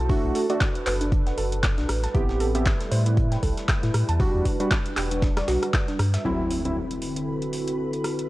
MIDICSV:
0, 0, Header, 1, 8, 480
1, 0, Start_track
1, 0, Tempo, 512821
1, 89, Time_signature, 4, 2, 24, 8
1, 7762, End_track
2, 0, Start_track
2, 0, Title_t, "String machine"
2, 0, Program_c, 0, 50
2, 5848, Note_on_c, 0, 71, 72
2, 5848, Note_on_c, 0, 83, 76
2, 7762, Note_off_c, 0, 71, 0
2, 7762, Note_off_c, 0, 83, 0
2, 7762, End_track
3, 0, Start_track
3, 0, Title_t, "Synth pluck"
3, 0, Program_c, 1, 84
3, 88, Note_on_c, 1, 62, 82
3, 177, Note_off_c, 1, 62, 0
3, 328, Note_on_c, 1, 69, 103
3, 364, Note_off_c, 1, 69, 0
3, 465, Note_on_c, 1, 74, 105
3, 532, Note_off_c, 1, 74, 0
3, 809, Note_on_c, 1, 71, 96
3, 868, Note_off_c, 1, 71, 0
3, 945, Note_on_c, 1, 62, 74
3, 1012, Note_off_c, 1, 62, 0
3, 1049, Note_on_c, 1, 62, 92
3, 1137, Note_off_c, 1, 62, 0
3, 1185, Note_on_c, 1, 78, 74
3, 1252, Note_off_c, 1, 78, 0
3, 1288, Note_on_c, 1, 69, 103
3, 1377, Note_off_c, 1, 69, 0
3, 1665, Note_on_c, 1, 62, 74
3, 1710, Note_off_c, 1, 62, 0
3, 1906, Note_on_c, 1, 81, 76
3, 1932, Note_off_c, 1, 81, 0
3, 2009, Note_on_c, 1, 64, 81
3, 2097, Note_off_c, 1, 64, 0
3, 2249, Note_on_c, 1, 69, 105
3, 2284, Note_off_c, 1, 69, 0
3, 2385, Note_on_c, 1, 76, 100
3, 2452, Note_off_c, 1, 76, 0
3, 2728, Note_on_c, 1, 72, 95
3, 2787, Note_off_c, 1, 72, 0
3, 2865, Note_on_c, 1, 64, 78
3, 2932, Note_off_c, 1, 64, 0
3, 2969, Note_on_c, 1, 64, 89
3, 3057, Note_off_c, 1, 64, 0
3, 3106, Note_on_c, 1, 79, 73
3, 3172, Note_off_c, 1, 79, 0
3, 3209, Note_on_c, 1, 69, 104
3, 3297, Note_off_c, 1, 69, 0
3, 3586, Note_on_c, 1, 64, 76
3, 3630, Note_off_c, 1, 64, 0
3, 3826, Note_on_c, 1, 81, 79
3, 3852, Note_off_c, 1, 81, 0
3, 3929, Note_on_c, 1, 62, 81
3, 4017, Note_off_c, 1, 62, 0
3, 4169, Note_on_c, 1, 66, 106
3, 4204, Note_off_c, 1, 66, 0
3, 4306, Note_on_c, 1, 71, 101
3, 4372, Note_off_c, 1, 71, 0
3, 4649, Note_on_c, 1, 67, 96
3, 4708, Note_off_c, 1, 67, 0
3, 4786, Note_on_c, 1, 62, 81
3, 4852, Note_off_c, 1, 62, 0
3, 4889, Note_on_c, 1, 62, 90
3, 4977, Note_off_c, 1, 62, 0
3, 5026, Note_on_c, 1, 74, 73
3, 5092, Note_off_c, 1, 74, 0
3, 5129, Note_on_c, 1, 66, 110
3, 5217, Note_off_c, 1, 66, 0
3, 5505, Note_on_c, 1, 62, 82
3, 5550, Note_off_c, 1, 62, 0
3, 5746, Note_on_c, 1, 76, 80
3, 5772, Note_off_c, 1, 76, 0
3, 7762, End_track
4, 0, Start_track
4, 0, Title_t, "Analog synth pad"
4, 0, Program_c, 2, 89
4, 0, Note_on_c, 2, 66, 74
4, 0, Note_on_c, 2, 69, 75
4, 89, Note_on_c, 2, 62, 83
4, 89, Note_on_c, 2, 71, 91
4, 1731, Note_off_c, 2, 66, 0
4, 1733, Note_off_c, 2, 69, 0
4, 1752, Note_off_c, 2, 62, 0
4, 1752, Note_off_c, 2, 71, 0
4, 1769, Note_on_c, 2, 55, 73
4, 1769, Note_on_c, 2, 57, 83
4, 1769, Note_on_c, 2, 64, 75
4, 1769, Note_on_c, 2, 71, 85
4, 3907, Note_off_c, 2, 57, 0
4, 3907, Note_off_c, 2, 64, 0
4, 3929, Note_on_c, 2, 62, 82
4, 3929, Note_on_c, 2, 66, 77
4, 5812, Note_off_c, 2, 55, 0
4, 5812, Note_off_c, 2, 71, 0
4, 5830, Note_off_c, 2, 62, 0
4, 5830, Note_off_c, 2, 66, 0
4, 5848, Note_on_c, 2, 64, 69
4, 5849, Note_on_c, 2, 50, 76
4, 5849, Note_on_c, 2, 60, 85
4, 5849, Note_on_c, 2, 66, 69
4, 5849, Note_on_c, 2, 69, 66
4, 7749, Note_off_c, 2, 60, 0
4, 7749, Note_off_c, 2, 64, 0
4, 7750, Note_off_c, 2, 50, 0
4, 7762, Note_off_c, 2, 66, 0
4, 7762, Note_off_c, 2, 69, 0
4, 7762, End_track
5, 0, Start_track
5, 0, Title_t, "Synth keys"
5, 0, Program_c, 3, 88
5, 87, Note_on_c, 3, 57, 85
5, 89, Note_on_c, 3, 62, 78
5, 91, Note_on_c, 3, 66, 97
5, 432, Note_off_c, 3, 57, 0
5, 433, Note_off_c, 3, 62, 0
5, 434, Note_off_c, 3, 66, 0
5, 464, Note_on_c, 3, 57, 77
5, 466, Note_on_c, 3, 62, 68
5, 468, Note_on_c, 3, 66, 83
5, 591, Note_off_c, 3, 57, 0
5, 592, Note_off_c, 3, 62, 0
5, 593, Note_off_c, 3, 66, 0
5, 2007, Note_on_c, 3, 59, 87
5, 2009, Note_on_c, 3, 60, 75
5, 2010, Note_on_c, 3, 67, 98
5, 2352, Note_off_c, 3, 59, 0
5, 2353, Note_off_c, 3, 60, 0
5, 2354, Note_off_c, 3, 67, 0
5, 2384, Note_on_c, 3, 59, 76
5, 2386, Note_on_c, 3, 60, 71
5, 2388, Note_on_c, 3, 67, 81
5, 2511, Note_off_c, 3, 59, 0
5, 2513, Note_off_c, 3, 60, 0
5, 2513, Note_off_c, 3, 67, 0
5, 3927, Note_on_c, 3, 55, 89
5, 3929, Note_on_c, 3, 62, 82
5, 3931, Note_on_c, 3, 66, 98
5, 4272, Note_off_c, 3, 55, 0
5, 4273, Note_off_c, 3, 62, 0
5, 4274, Note_off_c, 3, 66, 0
5, 4304, Note_on_c, 3, 55, 78
5, 4306, Note_on_c, 3, 62, 69
5, 4307, Note_on_c, 3, 66, 81
5, 4431, Note_off_c, 3, 55, 0
5, 4432, Note_off_c, 3, 62, 0
5, 4433, Note_off_c, 3, 66, 0
5, 5847, Note_on_c, 3, 38, 76
5, 5848, Note_on_c, 3, 54, 70
5, 5850, Note_on_c, 3, 60, 67
5, 5851, Note_on_c, 3, 64, 82
5, 6192, Note_off_c, 3, 38, 0
5, 6193, Note_off_c, 3, 54, 0
5, 6193, Note_off_c, 3, 60, 0
5, 6194, Note_off_c, 3, 64, 0
5, 6224, Note_on_c, 3, 38, 65
5, 6225, Note_on_c, 3, 54, 61
5, 6226, Note_on_c, 3, 60, 59
5, 6227, Note_on_c, 3, 64, 73
5, 6351, Note_off_c, 3, 38, 0
5, 6352, Note_off_c, 3, 54, 0
5, 6353, Note_off_c, 3, 60, 0
5, 6353, Note_off_c, 3, 64, 0
5, 7762, End_track
6, 0, Start_track
6, 0, Title_t, "Sub bass"
6, 0, Program_c, 4, 38
6, 0, Note_on_c, 4, 35, 87
6, 131, Note_off_c, 4, 35, 0
6, 225, Note_on_c, 4, 35, 80
6, 293, Note_off_c, 4, 35, 0
6, 808, Note_on_c, 4, 30, 88
6, 1232, Note_off_c, 4, 30, 0
6, 1288, Note_on_c, 4, 30, 88
6, 1665, Note_on_c, 4, 35, 94
6, 1679, Note_off_c, 4, 30, 0
6, 1733, Note_off_c, 4, 35, 0
6, 1768, Note_on_c, 4, 33, 82
6, 1937, Note_off_c, 4, 33, 0
6, 2009, Note_on_c, 4, 33, 99
6, 2550, Note_off_c, 4, 33, 0
6, 2728, Note_on_c, 4, 45, 84
6, 3152, Note_off_c, 4, 45, 0
6, 3209, Note_on_c, 4, 36, 95
6, 3299, Note_off_c, 4, 36, 0
6, 3585, Note_on_c, 4, 45, 85
6, 3653, Note_off_c, 4, 45, 0
6, 3688, Note_on_c, 4, 45, 85
6, 3778, Note_off_c, 4, 45, 0
6, 3825, Note_on_c, 4, 40, 90
6, 3971, Note_off_c, 4, 40, 0
6, 4065, Note_on_c, 4, 40, 80
6, 4133, Note_off_c, 4, 40, 0
6, 4648, Note_on_c, 4, 28, 88
6, 5072, Note_off_c, 4, 28, 0
6, 5128, Note_on_c, 4, 35, 91
6, 5218, Note_off_c, 4, 35, 0
6, 5608, Note_on_c, 4, 43, 102
6, 5778, Note_off_c, 4, 43, 0
6, 7762, End_track
7, 0, Start_track
7, 0, Title_t, "Impact"
7, 0, Program_c, 5, 103
7, 5849, Note_on_c, 5, 60, 64
7, 7762, Note_off_c, 5, 60, 0
7, 7762, End_track
8, 0, Start_track
8, 0, Title_t, "Drums"
8, 89, Note_on_c, 9, 36, 110
8, 89, Note_on_c, 9, 46, 81
8, 182, Note_off_c, 9, 36, 0
8, 183, Note_off_c, 9, 46, 0
8, 328, Note_on_c, 9, 46, 102
8, 329, Note_on_c, 9, 42, 67
8, 422, Note_off_c, 9, 42, 0
8, 422, Note_off_c, 9, 46, 0
8, 465, Note_on_c, 9, 42, 64
8, 466, Note_off_c, 9, 42, 0
8, 466, Note_on_c, 9, 42, 41
8, 559, Note_off_c, 9, 42, 0
8, 569, Note_on_c, 9, 36, 111
8, 569, Note_on_c, 9, 38, 109
8, 569, Note_on_c, 9, 42, 84
8, 571, Note_on_c, 9, 39, 102
8, 662, Note_off_c, 9, 36, 0
8, 662, Note_off_c, 9, 38, 0
8, 662, Note_off_c, 9, 42, 0
8, 665, Note_off_c, 9, 39, 0
8, 705, Note_on_c, 9, 42, 51
8, 799, Note_off_c, 9, 42, 0
8, 808, Note_on_c, 9, 46, 105
8, 809, Note_on_c, 9, 42, 65
8, 811, Note_on_c, 9, 39, 61
8, 902, Note_off_c, 9, 46, 0
8, 903, Note_off_c, 9, 42, 0
8, 905, Note_off_c, 9, 39, 0
8, 945, Note_on_c, 9, 42, 65
8, 1039, Note_off_c, 9, 42, 0
8, 1049, Note_on_c, 9, 36, 117
8, 1049, Note_on_c, 9, 42, 89
8, 1142, Note_off_c, 9, 36, 0
8, 1142, Note_off_c, 9, 42, 0
8, 1186, Note_on_c, 9, 38, 48
8, 1186, Note_on_c, 9, 42, 51
8, 1279, Note_off_c, 9, 38, 0
8, 1279, Note_off_c, 9, 42, 0
8, 1289, Note_on_c, 9, 42, 67
8, 1289, Note_on_c, 9, 46, 98
8, 1382, Note_off_c, 9, 42, 0
8, 1382, Note_off_c, 9, 46, 0
8, 1426, Note_on_c, 9, 42, 64
8, 1519, Note_off_c, 9, 42, 0
8, 1529, Note_on_c, 9, 36, 109
8, 1529, Note_on_c, 9, 38, 112
8, 1529, Note_on_c, 9, 42, 86
8, 1531, Note_on_c, 9, 39, 108
8, 1622, Note_off_c, 9, 36, 0
8, 1622, Note_off_c, 9, 38, 0
8, 1622, Note_off_c, 9, 42, 0
8, 1625, Note_off_c, 9, 39, 0
8, 1666, Note_on_c, 9, 38, 58
8, 1666, Note_on_c, 9, 42, 34
8, 1759, Note_off_c, 9, 42, 0
8, 1760, Note_off_c, 9, 38, 0
8, 1769, Note_on_c, 9, 37, 67
8, 1769, Note_on_c, 9, 42, 68
8, 1769, Note_on_c, 9, 46, 103
8, 1862, Note_off_c, 9, 37, 0
8, 1862, Note_off_c, 9, 46, 0
8, 1863, Note_off_c, 9, 42, 0
8, 1906, Note_on_c, 9, 38, 44
8, 1906, Note_on_c, 9, 42, 60
8, 1999, Note_off_c, 9, 38, 0
8, 1999, Note_off_c, 9, 42, 0
8, 2009, Note_on_c, 9, 36, 111
8, 2009, Note_on_c, 9, 42, 87
8, 2102, Note_off_c, 9, 36, 0
8, 2102, Note_off_c, 9, 42, 0
8, 2145, Note_on_c, 9, 38, 50
8, 2239, Note_off_c, 9, 38, 0
8, 2249, Note_on_c, 9, 42, 66
8, 2249, Note_on_c, 9, 46, 96
8, 2342, Note_off_c, 9, 42, 0
8, 2342, Note_off_c, 9, 46, 0
8, 2386, Note_on_c, 9, 42, 41
8, 2479, Note_off_c, 9, 42, 0
8, 2489, Note_on_c, 9, 36, 111
8, 2489, Note_on_c, 9, 38, 117
8, 2489, Note_on_c, 9, 42, 88
8, 2491, Note_on_c, 9, 39, 103
8, 2582, Note_off_c, 9, 36, 0
8, 2582, Note_off_c, 9, 38, 0
8, 2582, Note_off_c, 9, 42, 0
8, 2585, Note_off_c, 9, 39, 0
8, 2626, Note_on_c, 9, 38, 48
8, 2626, Note_on_c, 9, 42, 53
8, 2719, Note_off_c, 9, 38, 0
8, 2719, Note_off_c, 9, 42, 0
8, 2729, Note_on_c, 9, 42, 64
8, 2729, Note_on_c, 9, 46, 103
8, 2822, Note_off_c, 9, 46, 0
8, 2823, Note_off_c, 9, 42, 0
8, 2865, Note_on_c, 9, 42, 69
8, 2959, Note_off_c, 9, 42, 0
8, 2969, Note_on_c, 9, 36, 110
8, 2969, Note_on_c, 9, 42, 89
8, 3062, Note_off_c, 9, 36, 0
8, 3062, Note_off_c, 9, 42, 0
8, 3106, Note_on_c, 9, 38, 51
8, 3106, Note_on_c, 9, 42, 52
8, 3199, Note_off_c, 9, 42, 0
8, 3200, Note_off_c, 9, 38, 0
8, 3208, Note_on_c, 9, 46, 95
8, 3209, Note_on_c, 9, 36, 60
8, 3209, Note_on_c, 9, 42, 69
8, 3302, Note_off_c, 9, 36, 0
8, 3302, Note_off_c, 9, 42, 0
8, 3302, Note_off_c, 9, 46, 0
8, 3345, Note_on_c, 9, 42, 65
8, 3346, Note_on_c, 9, 38, 52
8, 3439, Note_off_c, 9, 42, 0
8, 3440, Note_off_c, 9, 38, 0
8, 3449, Note_on_c, 9, 36, 113
8, 3449, Note_on_c, 9, 38, 116
8, 3449, Note_on_c, 9, 42, 87
8, 3451, Note_on_c, 9, 39, 112
8, 3542, Note_off_c, 9, 36, 0
8, 3543, Note_off_c, 9, 38, 0
8, 3543, Note_off_c, 9, 42, 0
8, 3545, Note_off_c, 9, 39, 0
8, 3586, Note_on_c, 9, 38, 53
8, 3586, Note_on_c, 9, 42, 35
8, 3679, Note_off_c, 9, 42, 0
8, 3680, Note_off_c, 9, 38, 0
8, 3689, Note_on_c, 9, 37, 67
8, 3689, Note_on_c, 9, 42, 67
8, 3689, Note_on_c, 9, 46, 101
8, 3782, Note_off_c, 9, 37, 0
8, 3782, Note_off_c, 9, 46, 0
8, 3783, Note_off_c, 9, 42, 0
8, 3826, Note_on_c, 9, 42, 67
8, 3919, Note_off_c, 9, 42, 0
8, 3929, Note_on_c, 9, 36, 110
8, 3929, Note_on_c, 9, 46, 79
8, 4023, Note_off_c, 9, 36, 0
8, 4023, Note_off_c, 9, 46, 0
8, 4169, Note_on_c, 9, 36, 58
8, 4169, Note_on_c, 9, 42, 69
8, 4169, Note_on_c, 9, 46, 104
8, 4262, Note_off_c, 9, 46, 0
8, 4263, Note_off_c, 9, 36, 0
8, 4263, Note_off_c, 9, 42, 0
8, 4306, Note_on_c, 9, 42, 43
8, 4400, Note_off_c, 9, 42, 0
8, 4409, Note_on_c, 9, 36, 109
8, 4409, Note_on_c, 9, 38, 108
8, 4409, Note_on_c, 9, 42, 89
8, 4412, Note_on_c, 9, 39, 113
8, 4503, Note_off_c, 9, 36, 0
8, 4503, Note_off_c, 9, 38, 0
8, 4503, Note_off_c, 9, 42, 0
8, 4505, Note_off_c, 9, 39, 0
8, 4546, Note_on_c, 9, 42, 54
8, 4639, Note_off_c, 9, 42, 0
8, 4649, Note_on_c, 9, 42, 64
8, 4649, Note_on_c, 9, 46, 103
8, 4652, Note_on_c, 9, 39, 65
8, 4743, Note_off_c, 9, 42, 0
8, 4743, Note_off_c, 9, 46, 0
8, 4745, Note_off_c, 9, 39, 0
8, 4786, Note_on_c, 9, 42, 72
8, 4880, Note_off_c, 9, 42, 0
8, 4889, Note_on_c, 9, 36, 110
8, 4889, Note_on_c, 9, 38, 107
8, 4889, Note_on_c, 9, 42, 81
8, 4982, Note_off_c, 9, 38, 0
8, 4982, Note_off_c, 9, 42, 0
8, 4983, Note_off_c, 9, 36, 0
8, 5026, Note_on_c, 9, 37, 86
8, 5026, Note_on_c, 9, 38, 100
8, 5026, Note_on_c, 9, 42, 51
8, 5119, Note_off_c, 9, 38, 0
8, 5120, Note_off_c, 9, 37, 0
8, 5120, Note_off_c, 9, 42, 0
8, 5129, Note_on_c, 9, 38, 97
8, 5129, Note_on_c, 9, 42, 79
8, 5129, Note_on_c, 9, 46, 98
8, 5222, Note_off_c, 9, 38, 0
8, 5222, Note_off_c, 9, 42, 0
8, 5223, Note_off_c, 9, 46, 0
8, 5266, Note_on_c, 9, 37, 61
8, 5266, Note_on_c, 9, 42, 67
8, 5360, Note_off_c, 9, 37, 0
8, 5360, Note_off_c, 9, 42, 0
8, 5369, Note_on_c, 9, 36, 119
8, 5369, Note_on_c, 9, 38, 103
8, 5369, Note_on_c, 9, 42, 80
8, 5372, Note_on_c, 9, 39, 112
8, 5462, Note_off_c, 9, 38, 0
8, 5462, Note_off_c, 9, 42, 0
8, 5463, Note_off_c, 9, 36, 0
8, 5466, Note_off_c, 9, 39, 0
8, 5506, Note_on_c, 9, 38, 46
8, 5506, Note_on_c, 9, 42, 36
8, 5599, Note_off_c, 9, 38, 0
8, 5600, Note_off_c, 9, 42, 0
8, 5609, Note_on_c, 9, 37, 70
8, 5609, Note_on_c, 9, 42, 62
8, 5609, Note_on_c, 9, 46, 98
8, 5702, Note_off_c, 9, 42, 0
8, 5703, Note_off_c, 9, 37, 0
8, 5703, Note_off_c, 9, 46, 0
8, 5745, Note_on_c, 9, 38, 101
8, 5745, Note_on_c, 9, 42, 76
8, 5746, Note_off_c, 9, 42, 0
8, 5746, Note_on_c, 9, 42, 71
8, 5839, Note_off_c, 9, 38, 0
8, 5840, Note_off_c, 9, 42, 0
8, 6089, Note_on_c, 9, 46, 92
8, 6183, Note_off_c, 9, 46, 0
8, 6226, Note_on_c, 9, 42, 59
8, 6320, Note_off_c, 9, 42, 0
8, 6466, Note_on_c, 9, 42, 48
8, 6559, Note_off_c, 9, 42, 0
8, 6569, Note_on_c, 9, 46, 94
8, 6662, Note_off_c, 9, 46, 0
8, 6705, Note_on_c, 9, 42, 61
8, 6799, Note_off_c, 9, 42, 0
8, 6945, Note_on_c, 9, 42, 45
8, 7039, Note_off_c, 9, 42, 0
8, 7048, Note_on_c, 9, 46, 91
8, 7142, Note_off_c, 9, 46, 0
8, 7185, Note_on_c, 9, 42, 59
8, 7278, Note_off_c, 9, 42, 0
8, 7425, Note_on_c, 9, 42, 34
8, 7519, Note_off_c, 9, 42, 0
8, 7528, Note_on_c, 9, 37, 57
8, 7528, Note_on_c, 9, 46, 98
8, 7622, Note_off_c, 9, 37, 0
8, 7622, Note_off_c, 9, 46, 0
8, 7665, Note_on_c, 9, 42, 56
8, 7759, Note_off_c, 9, 42, 0
8, 7762, End_track
0, 0, End_of_file